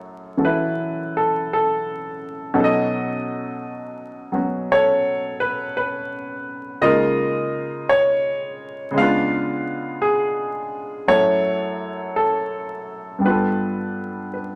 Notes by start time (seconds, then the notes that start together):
Already playing: F#2 F#3 A3 E4 A4 C#5
0.37 E3 C#4 F#4 A4
0.45 E4 B4
1.17 A4
1.53 A4
2.54 B2 F#3 C#4 D#4 A4
2.60 A4 D#5
4.32 F#3 B3 C#4 F#4
4.72 A4 C#5
5.40 B4
5.77 B4
6.81 C#3 G#3 A#3 D#4 F4 A#4 D#5
7.89 C#5
8.91 C#3 G#3
8.96 B3 D4 F5
9.01 F4 B4
10.02 G#4
11.08 F#2 F#3 A3 E4 A4 C#5
12.16 A4
13.19 G2 G3
13.24 B3 F4 B4
13.30 A4
14.34 B4